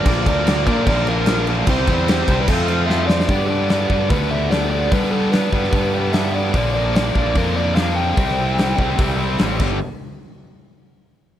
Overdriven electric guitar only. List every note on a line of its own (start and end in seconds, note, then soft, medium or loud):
0.05 0.46 A#2 loud
0.05 0.46 D3 loud
0.05 0.28 F3 loud
0.05 0.26 A#3 loud
0.05 0.25 D4 loud
0.26 0.47 F3 medium
0.26 0.49 A#3 medium
0.26 0.49 D4 medium
0.47 0.69 D3 medium
0.47 0.68 F3 medium
0.47 0.68 A#3 medium
0.47 0.67 D4 medium
0.68 1.09 A#2 medium
0.68 0.86 D3 medium
0.68 0.87 F3 medium
0.68 0.88 A#3 medium
0.68 0.90 D4 medium
0.87 1.26 D3 medium
0.87 1.10 F3 medium
0.87 1.08 A#3 medium
0.87 1.07 D4 medium
1.08 1.27 F3 medium
1.08 1.29 A#3 medium
1.08 1.30 D4 medium
1.27 1.50 D3 medium
1.27 1.49 F3 medium
1.27 1.48 A#3 medium
1.27 1.47 D4 medium
1.48 1.68 A#2 medium
1.48 1.68 D3 medium
1.48 1.68 F3 medium
1.48 1.67 A#3 loud
1.48 1.67 D4 medium
1.68 2.07 C3 loud
1.68 1.91 G3 medium
1.68 1.89 C4 loud
1.72 1.87 E4 loud
1.88 2.08 G3 medium
1.88 2.09 C4 medium
1.88 2.10 E4 medium
2.08 2.30 C3 medium
2.08 2.30 G3 medium
2.08 2.28 C4 medium
2.08 2.27 E4 medium
2.29 2.49 C3 medium
2.29 2.49 G3 medium
2.29 2.48 C4 medium
2.29 2.47 E4 medium
2.49 2.86 F3 loud
2.49 2.70 A3 loud
2.49 2.68 C4 loud
2.49 2.67 F4 loud
2.68 2.88 A3 medium
2.68 2.89 C4 medium
2.68 2.89 F4 medium
2.87 3.10 F3 medium
2.87 3.10 A3 medium
2.87 3.09 C4 medium
2.87 3.07 F4 medium
3.08 3.29 F3 medium
3.08 3.29 A3 medium
3.08 3.29 C4 medium
3.08 3.28 F4 medium
3.28 4.10 G2 medium
3.28 3.69 D3 medium
3.28 3.52 G3 medium
3.28 3.50 B3 loud
3.28 3.49 D4 loud
3.49 3.71 G3 medium
3.49 3.72 B3 medium
3.49 3.73 D4 medium
3.70 4.10 D3 medium
3.70 3.93 G3 medium
3.70 3.91 B3 medium
3.70 3.89 D4 medium
3.90 4.12 G3 medium
3.90 4.11 B3 medium
3.90 4.14 D4 medium
4.10 4.51 G2 medium
4.10 4.49 D3 medium
4.10 4.33 G3 medium
4.10 4.32 B3 medium
4.10 4.30 D4 medium
4.31 4.50 G3 medium
4.31 4.51 B3 medium
4.31 4.53 D4 medium
4.51 4.91 D3 medium
4.51 4.92 G3 medium
4.51 4.93 B3 medium
4.51 4.95 D4 medium
4.91 5.32 G2 medium
4.91 5.32 D3 medium
4.91 5.14 G3 medium
4.91 5.13 B3 medium
4.91 5.12 D4 loud
5.13 5.33 G3 medium
5.13 5.34 B3 medium
5.13 5.36 D4 medium
5.33 5.73 D3 medium
5.33 5.56 G3 medium
5.33 5.54 B3 medium
5.33 5.53 D4 medium
5.53 5.73 G3 medium
5.53 5.74 B3 medium
5.53 5.75 D4 medium
5.73 6.14 G2 medium
5.73 6.12 D3 medium
5.73 5.96 G3 medium
5.73 5.95 B3 medium
5.73 5.93 D4 medium
5.94 6.14 G3 medium
5.94 6.15 B3 medium
5.94 6.16 D4 medium
6.13 6.53 D3 medium
6.13 6.54 G3 medium
6.13 6.55 B3 medium
6.13 6.55 D4 medium
6.54 6.95 A#2 medium
6.54 6.94 D3 medium
6.54 6.76 F3 medium
6.54 6.75 A#3 loud
6.54 6.74 D4 medium
6.75 6.95 F3 medium
6.75 6.96 A#3 medium
6.75 6.98 D4 medium
6.95 7.35 D3 medium
6.95 7.17 F3 medium
6.95 7.16 A#3 medium
6.95 7.14 D4 medium
7.16 7.36 F3 medium
7.16 7.37 A#3 medium
7.16 7.37 D4 medium
7.36 7.77 A#2 medium
7.36 7.75 D3 medium
7.36 7.58 F3 medium
7.36 7.57 A#3 loud
7.36 7.55 D4 loud
7.56 7.77 F3 medium
7.56 7.78 A#3 medium
7.56 7.78 D4 medium
7.76 8.16 D3 medium
7.76 8.17 F3 medium
7.76 8.18 A#3 medium
7.76 8.18 D4 medium
8.17 8.57 C3 medium
8.17 8.39 G3 medium
8.17 8.39 C4 loud
8.17 8.37 E4 loud
8.38 8.58 G3 medium
8.38 8.60 C4 medium
8.38 8.61 E4 medium
8.59 8.98 C3 medium
8.59 8.81 G3 medium
8.59 8.80 C4 medium
8.59 8.79 E4 medium
8.80 9.00 G3 medium
8.80 9.00 C4 medium
8.80 9.02 E4 medium
9.00 9.38 C3 medium
9.00 9.21 G3 medium
9.00 9.19 C4 medium
9.00 9.17 E4 medium
9.19 9.39 G3 medium
9.19 9.41 C4 medium
9.19 9.41 E4 medium
9.39 9.60 C3 medium
9.39 9.61 G3 medium
9.39 9.61 C4 medium
9.39 9.62 E4 medium
9.60 9.76 G2 medium
9.60 9.77 D3 loud
9.60 9.78 G3 loud